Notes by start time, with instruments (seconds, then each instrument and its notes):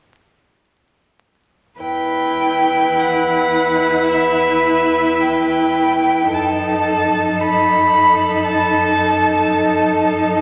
1.80 cello E2, viola E4, violin B4 G5
2.99 violin F#5
4.11 violin E5
5.20 violin G5
6.31 cello F#2, viola D#4, violin A4 A5
7.39 violin B5
8.47 violin A5